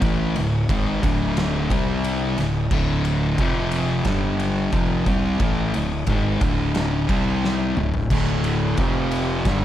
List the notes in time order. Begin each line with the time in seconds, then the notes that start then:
0.02 A1 A2 E3 A3, kick, ride
0.36 D1 D2 A2, ride
0.69 G#1 G#2 D#3 G#3, kick, ride
1.03 D1 D2 A2 D3, kick, ride
1.37 snare, ride
1.70 C2 C3 G3 C4, kick, ride
2.04 ride
2.38 D1 D2 A2, snare, ride
2.71 D1 D2 A2 D3, kick, crash
3.05 ride
3.38 F1 F2 C3 F3, kick, ride
3.72 ride
4.05 G1 G2 D3 G3, kick, snare, ride
4.40 ride
4.72 F1 F2 C3 F3, kick, ride
5.06 C2 C3 G3 C4, kick, ride
5.40 A1 A2 E3 A3, kick, ride
5.74 D1 D2 A2, ride
6.07 G#1 G#2 D#3 G#3, kick, ride
6.41 D1 D2 A2 D3, kick, ride
6.75 snare, ride
7.09 C2 C3 G3 C4, kick, ride
7.45 snare
7.77 D1 D2 A2, mid tom
7.94 floor tom
8.10 D1 D2 A2 D3, kick, crash
8.44 ride
8.77 F1 F2 C3 F3, kick, ride
9.11 ride
9.45 G1 G2 D3 G3, kick, snare, ride